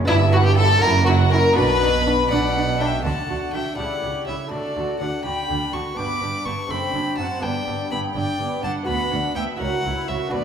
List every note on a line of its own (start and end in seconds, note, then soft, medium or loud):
0.05 0.74 G1 medium
0.05 0.74 G2 loud
0.05 0.78 B3 medium
0.05 0.79 E4 medium
0.05 0.16 E4 loud
0.09 0.71 G2 medium
0.09 0.17 E4 loud
0.09 0.18 E4 medium
0.09 0.32 E5 loud
0.33 0.43 E4 medium
0.33 0.38 F#4 medium
0.33 0.45 F#4 medium
0.33 0.46 F#5 loud
0.44 0.57 G4 medium
0.44 0.59 G5 loud
0.56 0.67 E4 medium
0.56 0.81 A4 loud
0.56 0.83 A4 loud
0.56 0.83 A5 loud
0.78 1.52 C#4 medium
0.78 1.53 E4 medium
0.78 1.54 F#4 medium
0.78 1.06 A#4 loud
0.83 1.48 F#1 medium
0.83 1.45 F#2 medium
0.83 1.48 F#2 loud
0.83 0.91 E4 medium
0.83 0.91 A#5 loud
1.05 1.16 E4 medium
1.05 1.31 F#4 medium
1.05 1.14 F#4 medium
1.05 1.32 F#5 loud
1.31 1.41 E4 medium
1.31 1.56 A#4 loud
1.31 1.55 A#4 medium
1.31 1.57 A#5 loud
1.53 2.22 B1 medium
1.53 2.99 B3 medium
1.53 3.00 D4 medium
1.53 1.65 D4 medium
1.53 3.01 F#4 medium
1.53 2.30 B4 loud
1.53 2.29 B4 loud
1.57 2.22 B2 medium
1.57 2.20 B2 medium
1.57 2.78 B5 loud
1.82 1.90 D4 medium
2.06 2.14 D4 medium
2.29 2.97 B1 medium
2.29 2.94 B2 medium
2.29 2.97 B2 medium
2.29 2.40 D4 medium
2.29 2.76 D5 medium
2.29 2.82 F#5 medium
2.57 2.65 D4 medium
2.80 2.88 D4 medium
2.80 3.04 E5 medium
2.80 3.05 G5 medium
3.00 3.73 A3 soft
3.00 3.74 D4 soft
3.00 3.76 F#4 soft
3.00 3.53 F#5 medium
3.05 3.13 D2 soft
3.05 3.27 D3 soft
3.05 3.13 D3 soft
3.05 3.29 D4 soft
3.05 3.28 A4 soft
3.05 3.54 A5 medium
3.29 3.38 D2 soft
3.29 3.37 D3 soft
3.29 3.52 D3 soft
3.29 3.55 F#4 soft
3.29 3.54 D5 soft
3.53 3.62 D2 soft
3.53 3.76 D3 soft
3.53 3.62 D3 soft
3.53 3.80 D4 soft
3.53 3.77 A4 soft
3.53 3.78 E5 soft
3.53 3.78 G5 medium
3.74 3.86 C#3 soft
3.74 4.46 A3 soft
3.74 4.48 E4 soft
3.74 4.49 G4 soft
3.74 4.01 A4 soft
3.74 4.26 D5 soft
3.74 4.26 F#5 medium
3.79 3.87 C#2 soft
3.79 4.01 C#3 soft
3.79 4.02 E4 soft
4.02 4.11 C#2 soft
4.02 4.11 C#3 soft
4.02 4.26 C#3 soft
4.02 4.28 G4 soft
4.02 4.27 C#5 soft
4.26 4.35 C#2 soft
4.26 4.35 C#3 soft
4.26 4.50 C#3 soft
4.26 4.53 E4 soft
4.26 4.50 A4 soft
4.26 4.34 C#5 soft
4.26 4.51 E5 soft
4.48 4.59 D2 soft
4.48 4.59 D3 soft
4.48 5.91 A3 soft
4.48 5.93 F#4 soft
4.48 4.74 A4 soft
4.48 5.00 D5 medium
4.52 4.74 D3 soft
4.52 4.76 D4 soft
4.52 5.00 A4 soft
4.75 4.84 D2 soft
4.75 4.84 D3 soft
4.75 4.98 D3 soft
4.75 5.01 F#4 soft
4.75 5.00 D5 soft
5.00 5.09 D2 soft
5.00 5.08 D3 soft
5.00 5.23 D3 soft
5.00 5.26 D4 soft
5.00 5.25 A4 soft
5.00 5.08 D5 soft
5.00 5.24 F#5 medium
5.23 5.34 D2 soft
5.23 5.33 D3 soft
5.23 5.48 D3 soft
5.23 5.50 F#4 soft
5.23 5.49 D5 soft
5.23 5.72 G5 medium
5.23 5.75 B5 medium
5.48 5.58 D2 soft
5.48 5.57 D3 soft
5.48 5.72 D3 soft
5.48 5.72 D4 soft
5.48 5.71 A4 soft
5.73 5.82 D2 soft
5.73 5.81 D3 soft
5.73 5.96 D3 soft
5.73 5.98 F#4 soft
5.73 5.98 D5 soft
5.73 5.81 A5 soft
5.73 5.98 C#6 medium
5.94 6.06 G1 soft
5.94 6.06 G2 soft
5.94 6.66 B3 soft
5.94 6.21 B3 soft
5.94 6.67 D4 soft
5.94 6.68 G4 soft
5.94 6.20 B4 soft
5.94 6.45 B5 medium
5.94 6.47 D6 medium
5.99 6.20 G2 soft
6.21 6.30 G1 soft
6.21 6.29 G2 soft
6.21 6.44 G2 soft
6.21 6.46 D4 soft
6.21 6.46 D5 soft
6.45 6.54 G1 soft
6.45 6.53 G2 soft
6.45 6.68 G2 soft
6.45 6.71 B3 soft
6.45 6.70 B4 soft
6.45 6.54 A5 medium
6.45 6.72 C#6 medium
6.67 6.78 F#1 soft
6.67 6.78 F#2 medium
6.67 7.39 C4 soft
6.67 6.93 C4 soft
6.67 7.39 D4 soft
6.67 7.41 A4 soft
6.67 6.93 C5 soft
6.67 7.17 G5 medium
6.67 7.18 B5 medium
6.71 6.92 F#2 soft
6.94 7.03 F#1 soft
6.94 7.02 F#2 soft
6.94 7.17 F#2 soft
6.94 7.19 D4 soft
6.94 7.19 D5 soft
7.18 7.27 F#1 soft
7.18 7.26 F#2 soft
7.18 7.41 F#2 soft
7.18 7.44 C4 soft
7.18 7.43 C5 soft
7.18 7.43 F#5 medium
7.18 7.44 A5 medium
7.39 7.51 G2 soft
7.39 8.82 B3 soft
7.39 8.83 D4 soft
7.39 8.83 B4 soft
7.39 7.65 B4 soft
7.39 7.91 G5 medium
7.43 7.51 G1 medium
7.43 7.65 G2 soft
7.43 7.66 B3 soft
7.43 7.92 D5 medium
7.66 7.76 G1 soft
7.66 7.74 G2 soft
7.66 7.89 G2 soft
7.66 7.92 D4 soft
7.66 7.92 D5 soft
7.91 8.00 G1 soft
7.91 7.99 G2 soft
7.91 8.14 G2 soft
7.91 8.16 B3 soft
7.91 8.16 B4 soft
7.91 8.15 G5 medium
7.91 7.99 B5 medium
8.15 8.24 G1 medium
8.15 8.23 G2 medium
8.15 8.38 G2 soft
8.15 8.40 D4 soft
8.15 8.40 D5 soft
8.15 8.64 D5 medium
8.15 8.63 G5 medium
8.40 8.48 G1 soft
8.40 8.48 G2 soft
8.40 8.62 G2 soft
8.40 8.63 B3 soft
8.40 8.63 B4 soft
8.64 8.72 G1 medium
8.64 8.72 G2 medium
8.64 8.86 G2 soft
8.64 8.89 D4 soft
8.64 8.88 D5 soft
8.64 8.87 F#5 medium
8.64 8.72 A5 medium
8.83 9.56 B3 soft
8.83 9.56 F#4 soft
8.83 9.57 B4 soft
8.87 9.09 D2 soft
8.87 8.96 D2 medium
8.87 8.97 D2 medium
8.87 9.11 B3 medium
8.87 9.10 B4 soft
8.87 9.35 F#5 medium
8.87 9.35 B5 medium
9.11 9.33 D2 soft
9.11 9.20 D2 medium
9.11 9.21 D2 medium
9.11 9.37 D4 soft
9.11 9.36 D5 soft
9.35 9.44 D2 medium
9.35 9.58 D2 soft
9.35 9.45 D2 soft
9.35 9.60 B3 soft
9.35 9.60 B4 soft
9.35 9.61 E5 medium
9.35 9.44 G5 medium
9.56 10.28 E4 soft
9.56 10.29 F#4 soft
9.56 10.30 A#4 soft
9.56 10.10 F#5 medium
9.60 9.69 C#2 medium
9.60 9.83 F#4 soft
9.60 9.83 A#4 soft
9.60 10.08 C#5 medium
9.85 9.93 C#2 soft
9.85 9.93 C#2 medium
9.85 10.09 E4 soft
9.85 10.09 C#5 soft
10.08 10.17 C#2 medium
10.08 10.34 F#4 medium
10.08 10.33 A#4 medium
10.08 10.17 C#5 medium
10.08 10.33 E5 medium
10.29 10.44 D4 soft
10.29 10.44 F#4 soft
10.29 10.44 B4 soft
10.33 10.41 D2 medium
10.33 10.44 D2 soft
10.33 10.42 D2 medium
10.33 10.44 B3 medium
10.33 10.44 B4 medium
10.33 10.44 D5 medium